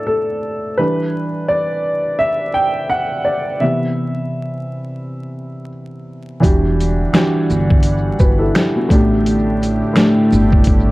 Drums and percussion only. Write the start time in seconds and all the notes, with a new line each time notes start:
6.43 kick, closed hi-hat
6.80 closed hi-hat, shaker
7.14 finger snap, snare, closed hi-hat
7.50 shaker
7.70 kick
7.83 closed hi-hat
8.19 kick, shaker
8.55 finger snap, snare, closed hi-hat
8.90 kick, closed hi-hat, shaker
9.26 closed hi-hat
9.63 closed hi-hat, shaker
9.96 finger snap, snare, closed hi-hat
10.32 shaker
10.52 kick
10.64 kick, closed hi-hat